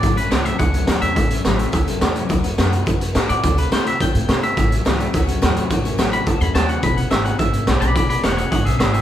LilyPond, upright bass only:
\new Staff \with { instrumentName = "Upright bass" } { \clef bass \time 4/4 \key a \major \tempo 4 = 212 a,,4 cis,4 cis,4 e,8 e,8 | a,,4 a,,4 cis,8 e,8 e,4 | d,4 fis,4 fis,4 a,8 a,8 | d,4 d,4 f,8 a,8 c4 |
a,,4 cis,4 cis,4 e,8 e,8 | a,,4 a,,4 cis,8 e,8 dis,4 | e,,4 gis,,4 gis,,4 b,,8 b,,8 | e,,4 e,,4 gis,,8 b,,8 gis,,4 | }